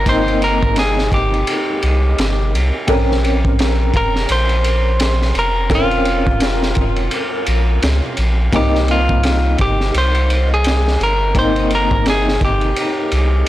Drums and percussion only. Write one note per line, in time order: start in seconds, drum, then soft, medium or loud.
0.06 kick loud
0.06 ride medium
0.28 ride soft
0.42 ride medium
0.63 kick medium
0.76 snare loud
0.76 ride loud
0.98 snare soft
1.12 kick medium
1.12 ride medium
1.34 ride soft
1.47 ride medium
1.82 ride medium
2.18 snare loud
2.18 ride medium
2.55 ride medium
2.88 kick loud
2.88 ride medium
3.12 snare soft
3.24 ride medium
3.45 kick medium
3.59 snare loud
3.59 ride medium
3.94 kick medium
3.94 ride medium
4.16 snare soft
4.29 ride medium
4.49 ride soft
4.64 ride medium
5.00 snare loud
5.00 ride medium
5.22 snare soft
5.35 ride medium
5.70 kick loud
5.70 ride medium
5.91 ride soft
6.05 ride medium
6.27 kick loud
6.40 snare loud
6.40 ride loud
6.63 snare medium
6.75 kick loud
6.75 ride medium
6.96 ride soft
7.11 ride medium
7.46 ride medium
7.82 snare loud
7.82 ride medium
8.17 ride medium
8.53 kick loud
8.53 ride medium
8.75 snare soft
8.88 ride medium
9.09 kick medium
9.23 snare loud
9.23 ride medium
9.58 kick medium
9.58 ride medium
9.81 snare soft
9.94 ride medium
10.15 ride soft
10.30 ride medium
10.64 snare loud
10.64 ride medium
10.88 snare soft
11.01 ride medium
11.35 kick loud
11.35 ride medium
11.56 ride soft
11.70 ride medium
11.91 kick loud
12.06 snare loud
12.06 ride medium
12.28 snare medium
12.41 kick medium
12.41 ride medium
12.61 ride soft
12.76 ride medium
13.12 ride medium